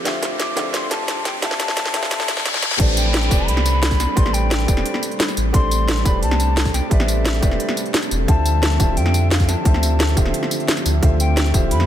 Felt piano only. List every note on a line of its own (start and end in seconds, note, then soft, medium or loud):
0.00 0.03 D3 loud
0.00 0.53 D3 medium
0.00 0.04 A3 medium
0.00 0.54 A3 medium
0.00 0.05 F4 medium
0.00 0.05 G4 medium
0.00 0.06 C5 medium
0.00 0.07 E5 loud
0.05 0.54 F4 medium
0.05 0.55 G4 medium
0.05 0.55 C5 medium
0.05 0.55 E5 loud
0.55 1.39 D3 loud
0.55 1.40 A3 medium
0.55 1.40 F4 medium
0.55 1.40 G4 medium
0.55 1.41 C5 medium
0.55 1.41 E5 loud
1.41 1.90 D3 medium
1.41 1.91 A3 medium
1.41 1.92 F4 medium
1.41 1.92 G4 medium
1.41 1.92 C5 medium
1.41 1.93 E5 loud
1.92 2.77 D3 loud
1.92 2.76 A3 medium
1.92 2.77 F4 medium
1.92 2.77 G4 medium
1.92 2.78 C5 medium
1.92 2.78 E5 loud
2.78 3.28 A3 medium
2.78 3.28 G4 medium
2.78 3.29 B4 medium
2.78 3.29 C5 medium
2.78 3.30 D5 loud
3.29 4.13 A3 loud
3.29 4.14 G4 medium
3.29 4.15 B4 medium
3.29 4.15 C5 medium
3.29 4.16 D5 loud
4.15 4.65 A3 loud
4.15 4.66 G4 medium
4.15 4.66 B4 medium
4.15 4.67 C5 medium
4.15 4.67 D5 loud
4.66 5.50 A3 loud
4.66 5.51 G4 medium
4.66 5.52 B4 medium
4.66 5.52 C5 medium
4.66 5.53 D5 loud
5.52 6.02 A3 loud
5.52 6.03 G4 medium
5.52 6.03 A4 medium
5.52 6.04 C5 medium
5.52 6.04 D5 loud
6.04 6.88 A3 medium
6.04 6.89 G4 medium
6.04 6.89 B4 medium
6.04 6.90 C5 medium
6.04 6.90 D5 loud
6.89 7.39 A3 medium
6.89 7.40 G4 medium
6.89 7.40 B4 medium
6.89 7.41 C5 medium
6.89 7.41 D5 loud
7.41 8.25 A3 loud
7.41 8.26 G4 medium
7.41 8.26 B4 medium
7.41 8.27 C5 medium
7.41 8.27 D5 loud
8.27 8.76 D3 loud
8.27 8.77 A3 medium
8.27 8.78 F4 medium
8.27 8.78 G4 medium
8.27 8.78 C5 medium
8.27 8.78 E5 loud
8.78 9.62 D3 loud
8.78 9.63 A3 medium
8.78 9.63 F4 medium
8.78 9.64 G4 medium
8.78 9.64 C5 medium
8.78 9.64 E5 loud
9.63 10.14 D3 loud
9.63 10.14 A3 medium
9.63 10.14 F4 medium
9.63 10.15 G4 medium
9.63 10.15 C5 medium
9.63 10.15 E5 loud
10.15 10.99 D3 loud
10.15 11.00 A3 medium
10.15 11.00 F4 medium
10.15 11.01 G4 medium
10.15 11.01 C5 medium
10.15 11.01 E5 loud
11.01 11.51 D3 loud
11.01 11.51 A3 medium
11.01 11.52 F4 medium
11.01 11.52 G4 medium
11.01 11.52 C5 medium
11.01 11.53 E5 loud
11.52 11.86 D3 loud
11.52 11.86 A3 medium
11.52 11.86 F4 medium
11.52 11.86 G4 medium
11.52 11.86 C5 medium
11.52 11.86 E5 loud